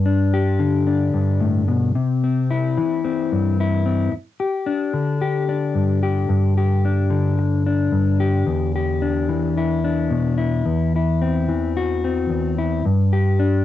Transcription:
Already playing: G2
0.06 D4
0.34 G4
0.59 D3
0.87 D4
1.14 G2
1.41 A2
1.68 B2
1.95 C3
2.24 C4
2.51 E4
2.78 E3
3.05 C4
3.32 G2
3.60 E4
3.86 C4
4.12 muted clean electric guitar stroke
4.40 G4
4.66 D4
4.93 D3
5.21 G4
5.49 D4
5.75 G2
6.03 G4
6.29 G2
6.57 G4
6.85 D4
7.10 D3
7.39 muted clean electric guitar stroke
7.67 D4
7.92 G2
8.20 G4
8.47 E2
8.76 G4
9.02 D4
9.29 E3
9.58 E4
9.84 D4
10.10 B2
10.38 E4
10.65 E2
10.96 E4
11.22 C4
11.49 E3
11.77 F#4
12.04 C4
12.30 E2
12.58 E4
12.85 G2
13.13 G4
13.39 D4

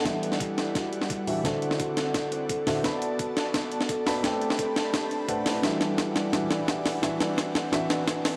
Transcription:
0.04 E3 G3 D4 E4 D5 E5 F#5, kick, snare, closed hi-hat
0.23 B4, closed hi-hat
0.32 snare
0.40 G4, kick, closed hi-hat
0.58 snare, closed hi-hat
0.75 F#4, kick, snare, closed hi-hat
0.93 G4, closed hi-hat
1.01 snare
1.10 kick, closed hi-hat
1.27 E3 D4 F#4 G4 B4 E5, open hi-hat
1.44 D3 C4 D4 F#4 A4 C5 E5, kick, snare, closed hi-hat
1.62 closed hi-hat
1.71 snare
1.80 F#4, kick, closed hi-hat
1.97 A4, snare, closed hi-hat
2.14 kick, snare, closed hi-hat
2.32 C5, closed hi-hat
2.49 A4, kick, closed hi-hat
2.66 D3 D4 F#4 C5 E5, snare, open hi-hat
2.83 B3 F#4 A4 D5 A5 B5, kick, snare, closed hi-hat
3.02 B4, closed hi-hat
3.19 kick, closed hi-hat
3.37 D5, snare, closed hi-hat
3.54 kick, snare, closed hi-hat
3.72 closed hi-hat
3.81 snare
3.89 A4, kick, closed hi-hat
4.06 B3 F#4 A4 D5 B5, snare, open hi-hat
4.23 A3 C4 G4 A4 B4 D5 G5 A5 B5, kick, snare, closed hi-hat
4.41 B4, closed hi-hat
4.50 snare
4.59 A4, kick, closed hi-hat
4.76 snare, closed hi-hat
4.94 kick, snare, closed hi-hat
5.11 D4, closed hi-hat
5.28 A3 A4 B4 C5 D5 F#5, kick, closed hi-hat
5.46 E4, snare, open hi-hat
5.62 E3 G3 D4 E4 F#4 D5 E5 F#5, kick, snare, closed hi-hat
5.81 B4, snare, closed hi-hat
5.98 G4, kick, snare, closed hi-hat
6.16 snare, closed hi-hat
6.32 E3 G3 D4 F#4 E5 F#5, kick, snare, closed hi-hat
6.51 B4, snare, closed hi-hat
6.68 G4, kick, snare, closed hi-hat
6.86 snare, open hi-hat
7.02 E3 C4 D4 F#4 E5, kick, snare, closed hi-hat
7.20 B4, snare, closed hi-hat
7.38 kick, snare, closed hi-hat
7.55 snare, closed hi-hat
7.72 E3 D4 F#4 E5, kick, snare, closed hi-hat
7.90 B4, snare, closed hi-hat
8.08 F#4, kick, snare, closed hi-hat
8.25 snare, open hi-hat

